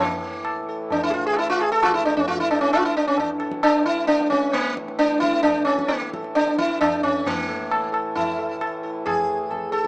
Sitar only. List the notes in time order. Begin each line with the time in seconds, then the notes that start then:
0.02 A#3
0.69 A4
0.92 D4
1.03 E4
1.10 F4 G#4
1.26 G#4
1.33 F4
1.38 E4
1.50 F4
1.61 G#4
1.72 A4
1.83 F4
1.94 E4
2.05 D4
2.17 C#4
2.28 F4
2.40 E4
2.51 D4
2.61 C#4
2.73 F4
2.85 E4
2.97 D4
3.08 C#4
3.19 D4
3.40 A4
3.63 D4
3.86 E4
4.07 D4
4.30 C#4
4.53 A#3
4.99 D4
5.20 E4
5.43 D4
5.65 C#4
5.88 A#3
6.13 A4
6.35 D4
6.58 E4
6.81 D4
7.03 C#4
7.27 A#3
7.49 A4
7.92 A4
8.15 E4
8.39 A4
8.61 A4
8.83 A4
9.06 G#4
9.50 A4
9.72 A4